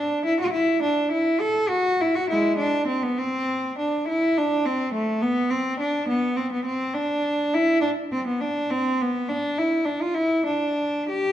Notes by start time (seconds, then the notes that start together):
Already playing: D4
0.25 E4
0.40 F#4
0.53 E4
0.82 D4
1.12 E4
1.40 A4
1.69 F#4
2.01 E4
2.15 F#4
2.30 G#3 E4
2.58 D4
2.87 C4
3.03 B3
3.18 C4
3.78 D4
4.08 E4
4.38 D4
4.66 C4
4.94 A3
5.22 B3
5.50 C4
5.80 D4
6.09 B3
6.36 C4
6.52 B3
6.65 C4
6.94 D4
7.54 E4
7.81 D4
8.12 C4
8.27 B3
8.40 D4
8.70 C4
9.01 B3
9.29 D4
9.58 E4
9.85 D4
10.02 F4
10.15 E4
10.46 D4
11.09 G4